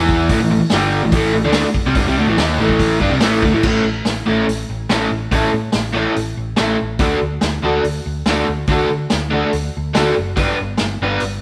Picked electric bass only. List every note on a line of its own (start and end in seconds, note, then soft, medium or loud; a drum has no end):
0.00 0.28 E2 loud
0.30 0.40 A1 medium
0.40 0.50 A1 medium
0.51 0.61 A1 medium
0.63 muted picked electric bass stroke soft
0.72 1.01 G1 medium
1.03 1.12 A1 medium
1.12 1.32 A1 loud
1.34 1.44 A1 medium
1.45 1.64 D2 medium
1.66 muted picked electric bass stroke soft
1.85 1.95 C2 medium
1.95 2.05 G1 loud
2.05 2.16 C2 loud
2.16 2.25 D2 medium
2.26 2.36 A1 medium
2.36 2.57 D#2 medium
2.58 2.98 A1 medium
3.00 3.10 G2 medium
3.11 3.20 C2 medium
3.21 3.41 A1 medium
3.42 3.53 D2 medium
3.54 3.63 A1 medium
3.63 3.79 A1 medium
3.85 4.00 A1 medium
4.05 4.21 A1 medium
4.28 4.43 A1 medium
4.48 4.63 A1 medium
4.70 4.85 A1 medium
4.91 5.06 A1 medium
5.11 5.26 A1 medium
5.31 5.47 A1 medium
5.53 5.68 A2 medium
5.75 6.05 A1 medium
6.17 6.32 A1 medium
6.37 6.53 A1 medium
6.60 6.74 A1 medium
6.82 6.99 A1 medium
6.99 7.15 D2 medium
7.22 7.37 D2 medium
7.42 7.58 D2 medium
7.63 7.79 D2 medium
7.84 7.99 D2 medium
8.06 8.21 D2 medium
8.26 8.42 D2 medium
8.49 8.64 D2 medium
8.68 8.84 D2 medium
8.90 9.06 D3 medium
9.12 9.43 D2 medium
9.53 9.69 D2 medium
9.77 9.91 D2 medium
9.96 10.11 D2 medium
10.17 10.32 F#1 medium
10.36 10.52 G1 medium
10.61 10.75 G1 medium
10.81 10.96 G1 medium
11.02 11.17 G1 medium
11.22 11.38 G1 medium